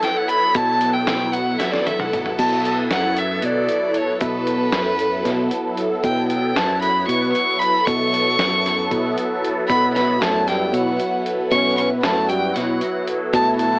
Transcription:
0.03 G5, snare, closed hi-hat, shaker
0.15 F#3 B3 E4 A4 F#5
0.28 B5, closed hi-hat
0.54 B2 F#3 B3 E4 A4 A5, kick, closed hi-hat, shaker
0.81 closed hi-hat
0.94 G5
1.05 F#3 B3 E4 F#4, snare, closed hi-hat
1.32 F#5, closed hi-hat, shaker
1.46 F#3 B3 E4 A4
1.59 E5, snare, closed hi-hat, shaker
1.72 D5, snare
1.86 E5, closed hi-hat, high tom
1.97 F#3 B3 E4 A4 F#5, mid tom
2.13 closed hi-hat, mid tom
2.26 floor tom
2.37 B2 F#3 B3 E4 A4 A5, kick, closed hi-hat, crash, shaker
2.65 A5, closed hi-hat
2.88 F#2 F#3 B3 E4 A4, snare, closed hi-hat
2.92 F#5
3.16 E5, closed hi-hat, shaker
3.29 F#3 B3 E4 A4
3.42 B2 D5, closed hi-hat
3.69 closed hi-hat, shaker
3.81 F#3 B3 E4 A4
3.94 C#5, closed hi-hat
4.20 B2 F#3 B3 E4 A4 B4, kick, closed hi-hat, shaker
4.47 closed hi-hat
4.72 F#2 F#3 B3 E4 A4, snare, closed hi-hat
4.99 closed hi-hat, shaker
5.11 F#3 B3 E4 A4
5.25 B2, snare, closed hi-hat
5.51 closed hi-hat, shaker
5.62 F#3 B3 E4 A4
5.78 closed hi-hat
6.02 B2 F#3 B3 E4 A4 G5, kick, closed hi-hat, shaker
6.29 G5, closed hi-hat
6.54 F#2 F#3 B3 E4 F#4 A5, snare, closed hi-hat
6.82 B5, closed hi-hat, shaker
6.93 F#3 B3 E4 B4
7.08 B2 C#6, closed hi-hat
7.33 C#6, closed hi-hat, shaker
7.46 F#3 B3 E4 A4
7.59 B5, closed hi-hat
7.86 B2 F#3 B3 E4 A4 C#6, kick, closed hi-hat, shaker
8.14 closed hi-hat
8.38 F#2 F#3 B3 E4 A4, snare, closed hi-hat, shaker
8.65 snare, closed hi-hat, shaker
8.78 F#3 B3 E4 A4
8.91 B2, kick, closed hi-hat
9.17 closed hi-hat, shaker
9.29 F#3 B3 E4 A4
9.43 closed hi-hat, shaker
9.68 B2 F#3 B3 E4 F#4 B5, kick, closed hi-hat, shaker
9.95 B3 B5, snare, closed hi-hat
10.20 F#2 F#3 A3 B3 E4 A4 A5, snare, closed hi-hat
10.47 G3 G5, snare, closed hi-hat, shaker
10.59 F#3 B3 E4 F#4
10.73 B2 F#3 F#5, closed hi-hat
10.99 closed hi-hat, shaker
11.10 F#3 B3 E4 A4
11.26 closed hi-hat
11.49 B2 F#3 B3 C#4 E4 B4 C#6, kick, closed hi-hat, shaker
11.77 C#4 C#6, closed hi-hat
12.01 F#2 F#3 A3 B3 E4 F#4 A5, snare, closed hi-hat
12.29 G3 G5, closed hi-hat, shaker
12.42 F#3 B3 E4 F#4
12.54 B2 F#3 F#5, snare, closed hi-hat
12.81 closed hi-hat, shaker
12.93 F#3 B3 E4 A4
13.07 closed hi-hat
13.33 B2 F#3 A3 B3 E4 A4 A5, kick, closed hi-hat, shaker
13.57 A3 A5, closed hi-hat

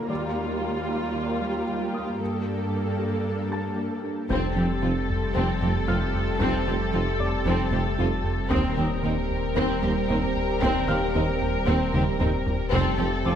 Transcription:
Already playing: A#3 A#4
0.09 D#2 D#3 G3 F4 G4 D5 D6
0.36 D#4
0.89 D#4
1.15 D#3
1.41 G3
1.67 G3
1.93 A#3 D#6
2.20 G2 G3 A#3 D4 A4
2.47 G4
2.99 G4
3.25 G3
3.52 A5 A6
3.78 A#3
4.04 D4
4.29 F1 F2 F3 G3 A3 C4 G4 A4 G5 G6, taiko
4.56 F1 F2 F3 C4 G4
4.82 F1 F2 F3 C4 F4
5.09 F2, taiko
5.35 F1 F2 F3 C4
5.62 F1 F2 A3 C4 G4
5.88 F1 F2 C4 F4 F6
6.14 F2
6.40 F1 F2 F3 C4, taiko
6.66 F1 F2 F3 C4 G4
6.93 F1 F2 F3 C4 F4
7.20 F2 D5 D6
7.45 F1 F2 F3 C4
7.72 F1 F2 A3 C4 G4
7.98 F1 F2 C4 F4
8.24 F2
8.50 D#1 D#2 D#3 G3 C4 G4 A#4 D#6, taiko
8.77 D#2 D#3 A#3 C4 G4
9.03 D#2 D#3 A#3 C4 D#4
9.30 D#2
9.56 D#2 D#3 C4
9.82 D#2 G3 C4 G4
10.09 D#2 C4 D#4
10.36 D#2
10.62 D#2 D#3 C4, taiko
10.88 D#2 D#3 A#3 C4 G4 F5 F6
11.14 D#2 D#3 A#3 C4 D#4
11.42 D#2
11.66 D#2 D#3 C4
11.93 D#2 G3 C4 G4, taiko mid
12.19 D#2 C4 D#4, taiko low-mid
12.47 D#2, taiko low
12.72 F1 F2 F3 G3 A3 C4 G4 A4, taiko
12.99 F1 F2 F3 C4 G4
13.25 F1 F2 F3 C4 F4 D6

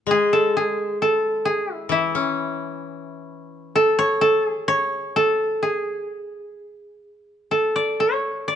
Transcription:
0.07 G#3
0.11 G#4
0.33 A4
0.57 G#4
1.02 A4
1.45 G#4
1.74 E4
1.89 E3 E4
2.15 C#4
3.75 A4
3.99 C#5
4.21 A4
4.46 G#4
4.68 C#5
5.16 A4
5.63 G#4
7.51 A4
7.76 D5
8.00 C#5
8.48 D5

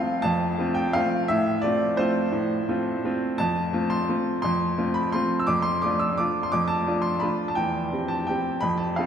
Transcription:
Already playing: A3 C4 F4 F5
0.22 F2 A5
0.58 A3 C4 F4
0.75 G5
0.93 A3 C4 F4 F5
1.28 A2 E5
1.62 A3 C4 F4 D5
1.97 A3 C4 F4 C5
2.32 A2
2.69 A3 C4 F4
3.04 A3 C4 F4
3.38 F2 A5
3.73 A3 C4 F4
3.90 C6
4.09 A3 C4 F4
4.42 F2 C6
4.78 A3 C4 F4
4.94 B5
5.12 A3 C4 F4 C6
5.39 E6
5.47 F2 D6
5.62 C6
5.82 A3 D4 F4 D6
5.99 E6
6.18 A3 D4 F4 D6
6.43 C6
6.52 F2 D6
6.68 A5
6.87 A3 D4 F4
7.02 C6
7.20 A3 D4 F4 B5
7.48 A5
7.55 E2 G5
7.93 C4 G4
8.08 A5
8.27 C4 G4 G5
8.61 F2 B5
8.78 A5
8.96 C4 F4 A4 F5

